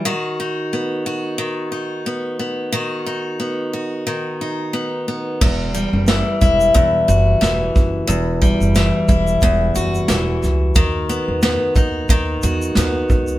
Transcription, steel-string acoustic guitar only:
X:1
M:4/4
L:1/8
Q:"Swing 16ths" 1/4=90
K:Elyd
V:1 name="Steel-string acoustic guitar"
[D,F] D B, F D, D B, B, | [D,F] D B, F D, D B, B, | E,, =G, E, E E,, F E,2 | E,, =G, E, E E,, F E,2 |
D, B, B, D D, F B,2 |]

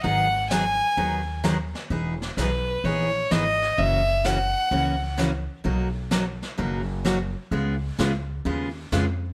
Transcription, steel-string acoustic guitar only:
X:1
M:4/4
L:1/8
Q:"Swing" 1/4=128
K:B
V:1 name="Steel-string acoustic guitar"
[D,F,B,DG] z [D,F,B,DG] z [D,F,B,DG] z [D,F,B,DG] z | [E,B,DG] z [E,B,DG] z [E,B,DG] z [E,B,DG] z | [C,E,A,CF] z [C,E,A,CF] z [C,E,A,CF] z [C,E,A,CF] z | [B,,F,A,DF] z [B,,F,A,DF] z [B,,F,A,DF] z [B,,F,A,DF] z |
[C,G,B,^EG] z [C,G,B,EG] z [C,G,B,EG] z [C,G,B,EG] z |]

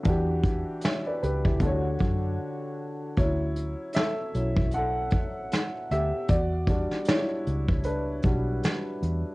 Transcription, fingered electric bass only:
X:1
M:4/4
L:1/16
Q:"Swing 16ths" 1/4=77
K:D
V:1 name="Fingered electric bass" clef=bass
E,,3 z3 C,,2 D,,2 F,,2 z4 | D,,3 z3 B,,,4 A,,,2 z2 D,, z | E,,3 z3 C,,4 B,,,2 z2 E,, z |]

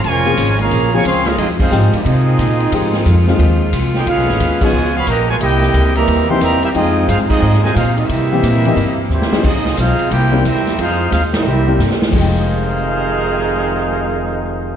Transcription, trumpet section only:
X:1
M:4/4
L:1/8
Q:"Swing" 1/4=178
K:Fm
V:1 name="Trumpet section"
[FBda]3 [Adfb]2 [Bfad'] [Adfc'] [DABf] | [CFAe] [EAcf]2 [CFAe]4- [CFAe]- | [CFAe]4 z3 [EAcg] | [DA_cf]3 [Fcda]2 [Adf_c'] [Gceb] [Fcda] |
[=EB^dg]3 [Gd=eb]2 [Begc'] [Gdeb] [B,^DGe] | [CFAe]2 [EAcf] [CFAe]2 [Fcea] [EAcf] [B,Ge=e]- | [B,Ge=e]6 [B,=EGc]2 | [CFAe]2 [EAcf]2 [=EBcg]2 [CGB=e]2 |
[EAcf]2 [EAcf] [CGB=e]4 z | [EAcf]8- | [EAcf]8 |]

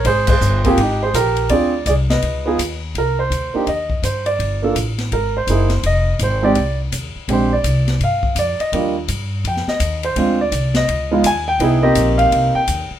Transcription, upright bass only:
X:1
M:4/4
L:1/8
Q:"Swing" 1/4=166
K:Cm
V:1 name="Upright bass" clef=bass
A,,,2 G,,,2 A,,,2 B,,,2 | D,,2 C,,2 _D,,2 E,,2 | C,,2 D,, z E,,2 G,,2 | G,,,2 =A,,,2 ^G,,,2 ^F,,,2 |
F,,,2 A,,,2 C,,2 E,, z | B,,,2 C,,2 G,,2 F,, z | E,,2 G,,2 F,, z E,,2 | D,,2 C,,2 _D,,2 E,,2 |
C,,2 B,,,2 C,, z E,, z |]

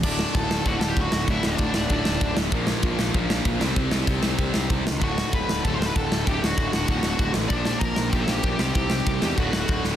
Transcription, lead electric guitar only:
X:1
M:4/4
L:1/8
Q:1/4=192
K:Dmix
V:1 name="Lead electric guitar"
[Dd]2 [Aa]2 (3[Ff] [Aa] [Gg] [Ff]2 | [Ee] [Dd]2 [Dd] [Dd]3 z | z8 | z8 |
[Ff]2 [Bb]2 (3[Aa] [cc'] [Bb] [Aa]2 | [Gg] [Ff]2 [Ff] [Ff]3 z | [Dd]2 [_B_b]2 (3[Gg] [Aa] [Gg]- [Gg]2 | [Gg]4 [Ff]3 z |]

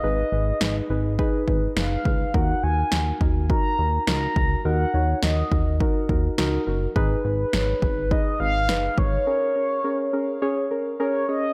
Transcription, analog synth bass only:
X:1
M:4/4
L:1/16
Q:1/4=104
K:Ebm
V:1 name="Analog synth bass" clef=bass
A,,,2 A,,,2 A,,,2 A,,,3 z A,,,2 G,,,2 D,,2 | E,,2 E,,2 E,,2 E,,3 z E,,2 D,,2 D,,2 | E,,2 E,,2 E,,2 E,,3 z E,,2 D,,2 G,,,2 | A,,,2 A,,,2 A,,,2 A,,,3 z A,,,2 G,,,2 A,,,2 |
z16 |]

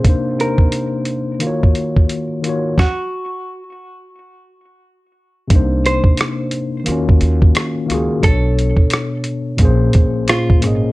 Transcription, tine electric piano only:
X:1
M:4/4
L:1/8
Q:"Swing 16ths" 1/4=88
K:Eblyd
V:1 name="Tine electric piano"
[C,B,DEc] [C,B,DEc]3 [E,B,F_G_d]2 z [E,B,FGd] | z8 | [C,B,DEc]3 z [E,B,_DF_G]2 z [E,B,FG_A] | [=B,,=B,DA_d]3 z [_B,,_B,_D_Ac]2 z [B,,B,DAe] |]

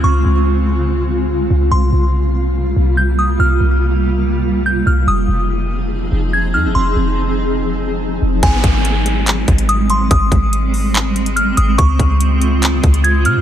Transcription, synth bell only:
X:1
M:4/4
L:1/8
Q:1/4=143
K:Ab
V:1 name="Synth bell"
d'8 | c'6 g' e' | f'6 g' f' | e'6 a' f' |
c'8 | a6 e' c' | e'6 f' e' | d'6 a' f' |]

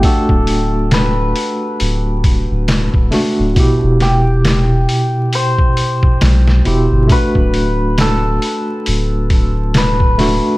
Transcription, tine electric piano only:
X:1
M:4/4
L:1/8
Q:"Swing 16ths" 1/4=68
K:Bphr
V:1 name="Tine electric piano"
[A,DF]6- [A,DF] [A,DF] | [B,,EG]6- [B,,EG] [B,,EG] | [A,DF]6- [A,DF] [A,DF] |]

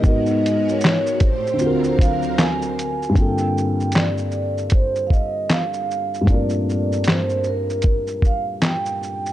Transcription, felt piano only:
X:1
M:4/4
L:1/8
Q:"Swing 16ths" 1/4=77
K:Dm
V:1 name="Felt piano"
[_A,,_C_E_GB]3 z [D,=C^E^F^A]4 | [K:Gm] [G,,D,B,CFA]8 | [G,,A,B,CDFB]8 |]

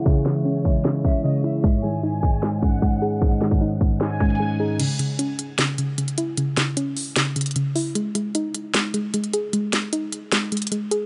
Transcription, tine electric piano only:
X:1
M:4/4
L:1/8
Q:1/4=152
K:C#m
V:1 name="Tine electric piano" clef=bass
[C,CE] E, C, G, C, C C, E | G,, D, G,, G, G,, C G,, D | G,, D, G,, G, G,, C G,, D | z8 |
z8 | z8 | z8 |]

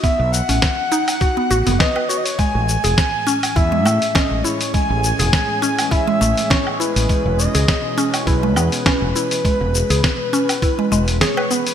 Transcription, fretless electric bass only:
X:1
M:4/4
L:1/16
Q:"Swing 16ths" 1/4=102
K:Alyd
V:1 name="Fretless electric bass" clef=bass
z B,,, z A,,, z6 A,,, F,,, z4 | z A,,, z E,,, z4 E,,2 A,, z2 A,,, z2 | z A,,, z E,,, z6 A,,, z4 A,,, | z E,,, z C,, z4 B,,,2 E,, z2 E,,, z2 |
z E,,, z C,, z6 E,,,2 z4 |]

